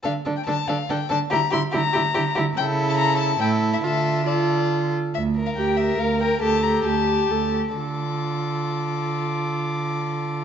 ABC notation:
X:1
M:3/4
L:1/16
Q:1/4=139
K:Dm
V:1 name="Violin"
f3 g a2 f2 g2 a2 | b2 c'2 b6 z2 | g3 a b2 a2 g3 e | e4 d6 z2 |
e3 f g2 e2 f2 g2 | a2 b2 a6 z2 | d'12- | d'12 |]
V:2 name="Violin"
A2 A2 A2 A2 A2 A2 | G2 G2 G2 G2 G2 G2 | A8 A4 | A4 A6 z2 |
z2 B4 B4 B2 | G2 G4 G4 G2 | A12- | A12 |]
V:3 name="Viola"
D2 D2 D2 D2 D2 D2 | E2 E2 E2 E2 E2 E2 | E8 E4 | F4 F6 z2 |
z4 G4 B4 | A4 G4 A2 z2 | F12- | F12 |]
V:4 name="Cello" clef=bass
D,2 D,2 D,2 D,2 D,2 D,2 | D,2 D,2 D,2 D,2 D,2 D,2 | ^C,8 A,,4 | D,8- D,2 z2 |
D,,4 D,,4 D,,4 | D,,4 D,,4 D,,4 | D,12- | D,12 |]